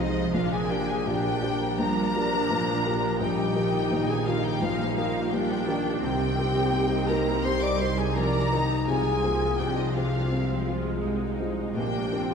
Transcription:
Already playing: C2 C3 F3 G#3 C4 D#4 F4 G#4 C5 D#5 F5 G#5
0.00 F4 G#4
0.16 G#3
0.33 A#1 A#2 A#3 D4 F4 F5
0.52 F3 G#4 G#5
0.70 D4 G4 A#4 G5
0.88 G4 G#4 G#5
1.06 A#1 A#2 G3 D4 G4 A#4 G5
1.25 D5
1.43 D4 G4 A#4 G5
1.61 A#5
1.78 A#1 A#2 F3 G3 D4 A#4 G5 A#5
1.97 D5
2.15 F3 D4 G4 A#4
2.33 F3
2.50 A#1 A#2
2.69 F3
2.85 D4 G4 A#4
3.03 F3
3.20 A#1 A#2 G3 D#4 G4 G5
3.39 A#3
3.55 D#3 F3 G3 D#4 G4 A#4
3.73 G4
3.90 A#1 A#2 D#3 A#4
4.09 G#4 G#5
4.26 D#4 F4 G4 A#4 F5 G5
4.44 G4 G5 A#5
4.61 A#1 A#2 A#3 D#4 F4 F5 G5
4.97 D#4 F4 G4 A#4 F5
5.15 A#3
5.32 A#1 A#2 F3 G3 D4 G4 G5
5.50 A#3
5.67 D#3 D4 G4 A#4
5.86 A#3
6.01 C2 C3 D#3 C4 G4 G5
6.21 G3
6.38 F3 D#4 G4 A#4
6.56 G4
6.73 C2 C3 G3 A#3 A#4
6.92 D#5
7.09 D#4 G4 A#4 G5 A#5
7.28 A#5
7.45 C2 C3 G3 C5 G5 C6
7.63 D5 D#5 D6
7.80 D#4 G4 A#4 C5 C6
7.98 G3 G#4 G#5
8.16 C2 C3 F3 G3 D#4 A#4 D5 A#5
8.35 G3
8.52 D#3 D#4 G4 A#4
8.71 G3
8.87 C2 C3 F3 G#3 F4 G#4 G#5
9.06 G#3
9.22 A#3 C4 F4 G#4
9.42 F4
9.59 C2 C3 C4 D4 G4 G#4 G5
9.77 D#4 C5 D#5
9.95 C4 F4 G#4 F5
10.13 G#5
10.31 C2 C3 G#3 C4 F5
10.50 C5
10.67 C4 F4 G#4
10.86 G#3
11.02 C2 C3 G#3 C4 D#4
11.22 G#3
11.40 C4 F4 G#4
11.57 G#3
11.75 A#1 A#2 A#3 D4 G4 G5
11.94 F3
12.11 C4 D4 F4 A#4
12.29 F4

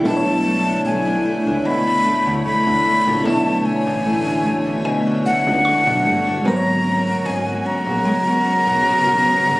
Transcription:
Already playing: E3 D4 E4 G4
0.02 B1 B2 D3 A3 C#5
0.06 D4 E4 A5
0.10 B4
0.17 C#5
0.27 D4
0.45 A3
0.67 D4
0.85 B1 A3 G#5
1.07 D4
1.25 A3
1.47 C#2 D4
1.65 B2 B5
1.87 D4
2.05 D2 A3
2.27 D2 D4
2.45 D2 A3 B5
2.67 D2 D4
2.85 A3
3.07 A#1 D4
3.22 B1 B2 A3 F#4 A5
3.26 D4 E4
3.30 C#5
3.47 D4
3.65 A3 G#5
3.87 A1 D4
4.05 A3
4.27 D4
4.45 A3
4.67 D4
4.85 B2 G#5
5.07 D4
5.25 C#2 A3 F#5
5.47 C#2 D4
5.65 A3 C#6
5.87 B1 D4
6.05 G1 A3
6.27 D4
6.42 G#1 G#2 C#3 F#3 G#3 B3 A#4 A#5
6.46 B3 A#4
6.50 C5
6.56 C#5
6.67 F#4
6.85 C#4
7.07 F#4
7.25 G#1 C#4 G#5
7.47 F#4
7.65 C#4 A#5
7.87 A#1 F#4
8.05 G#3
8.27 F#4
8.45 B1 C#4
8.67 B1 F#4
8.85 B1 C#4
9.06 B1 F#4
9.25 C#4
9.46 G1 F#4

